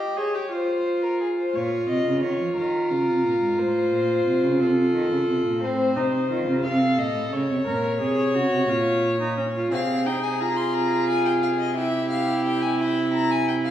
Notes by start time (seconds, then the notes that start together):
Already playing: G4 D#5
0.17 G#4 C#5
0.34 G4
0.51 F4 C5
1.03 A#4
1.20 G#4
1.37 C5
1.54 A#2 F4 C#5
1.89 C3 D#5
2.06 C#3
2.23 D#3 C#5
2.40 F3
2.56 D#3 A#4
2.90 C#3
3.07 C3
3.24 A#2
3.41 G#2
3.58 A2 C5
3.92 A#2
4.26 C3
4.43 C#3
4.60 C3 A4
4.94 D#3
5.11 C#3
5.28 C3
5.45 A#2
5.62 A2 C4 C5
5.96 C3 D#4
6.30 D#3 F4
6.47 C#3
6.64 C3 A4 F5
6.98 A#2 D#5
7.15 A2
7.32 C#3 C#5
7.49 C3
7.66 A#2 A#4
8.00 C3 G#4
8.34 C#3 F#4
8.52 C3
8.69 A#2 F4
9.20 D#4
9.37 C#4
9.55 F4
9.71 C3 C4 G#4 F5
10.06 D#4 G5
10.24 G#5
10.40 F4 A#5
10.56 C6
10.74 A#5
11.08 G#5
11.25 G5
11.43 F5
11.59 D#5
11.76 E4 G4 E5
12.10 F5
12.45 G5
12.62 G#5
12.79 E4 G5
13.13 A#5
13.31 G#5
13.48 G5
13.65 F5